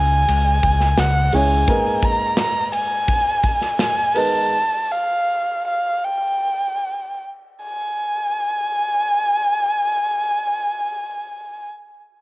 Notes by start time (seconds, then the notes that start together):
Already playing: C#2 C#3 G#3 C#4 E4 G#4 C#5 G#5
0.29 C#2, ride
0.63 C#2, kick, ride
0.80 snare
0.97 C#2 F#5, snare, ride
1.32 C#2 G#3 C#4 E4 G#4 C#5 G#5, open hi-hat, ride
1.67 G#2 A#3 B3 D#4 G#4 A#4, kick, hi-hat pedal, ride
2.02 A#5, kick, ride
2.37 A#5, snare, ride
2.73 G#5, ride
3.08 kick, ride
3.43 kick, ride
3.62 snare
3.79 G#5, snare, ride
4.15 G#3 B3 D#4 A#4 B4 A5, open hi-hat, ride
4.91 F5
5.67 F5
6.05 G5
7.63 G#5